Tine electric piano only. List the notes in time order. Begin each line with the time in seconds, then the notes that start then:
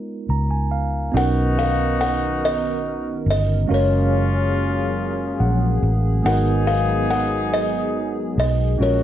Already playing: G#3 B3 D#4 F4 A#4
0.30 A#5
0.51 G#5
0.71 F5
1.12 B3 C#4 D#4 F#4
1.17 A#4
3.66 G#3 C#4 F#4 F5
3.71 A#4
5.40 F#5
6.22 G#3 B3 D#4 F#4
6.27 A#4
8.78 G#3 C#4 F4 F#4
8.83 A#4